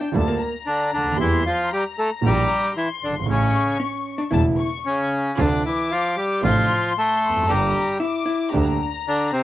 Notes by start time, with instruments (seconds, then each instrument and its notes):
0.01 hollow-body jazz guitar D4
0.12 grand piano D2 D3 G3 A#3 F4, double bass D2, violin section A5
0.28 hollow-body jazz guitar A#3
0.40 violin section A#5
0.67 bandoneon D3 D4
0.91 double bass D2, bandoneon D3 D4
0.98 grand piano C#2
1.05 grand piano D2
1.12 grand piano D#2
1.17 double bass E2, grand piano E2 E3 G3 A#3 G4, bandoneon E4, violin section C6
1.21 bandoneon E3
1.46 bandoneon F3 F4
1.68 violin section A#5
1.73 bandoneon G3 G4
1.99 bandoneon A3 A4
2.21 grand piano A#1 A#2 E3 G3 A#3 G4, double bass A#1
2.25 bandoneon G3 G4
2.74 bandoneon E3 E4, violin section C6
3.01 double bass G1, bandoneon D3 D4
3.07 grand piano F#1
3.12 grand piano G1
3.19 grand piano G#1
3.26 grand piano A1 A2 C#3 E3 A3 E4, double bass A1, bandoneon C#3, violin section C#6
3.31 bandoneon C#4
3.80 hollow-body jazz guitar C#4
4.18 hollow-body jazz guitar D4
4.31 grand piano E1 E2 C#3 E3 A3 E4, double bass E1, hollow-body jazz guitar E4, violin section A5
4.59 violin section C#6
4.86 bandoneon C#3 C#4
5.37 grand piano D2 C3 D3 F3 A3 D4, double bass D2, bandoneon D3 D4, string section C4 D4 F4, violin section D6
5.66 bandoneon E3 E4
5.91 bandoneon F3 F4
6.17 bandoneon G3 G4
6.43 grand piano A1 A2 C3 F3 A3 D4, double bass A1, bandoneon F3 F4, string section C4 D4 F4, violin section C6
6.98 bandoneon A3 A4
7.23 double bass F1
7.29 grand piano E2
7.36 grand piano F2
7.42 grand piano F#2
7.48 double bass G1, grand piano G1 G2 D3 G3 A#3 G4, bandoneon G3 G4, string section A#3 D4 G4, violin section A#5
8.00 hollow-body jazz guitar E4, violin section D6
8.26 hollow-body jazz guitar E4
8.52 grand piano D2 D3 G3 A#3 G4, double bass D2, string section A#3 D4 G4, hollow-body jazz guitar D4, violin section A#5
9.07 bandoneon D3 D4
9.32 bandoneon C3 C4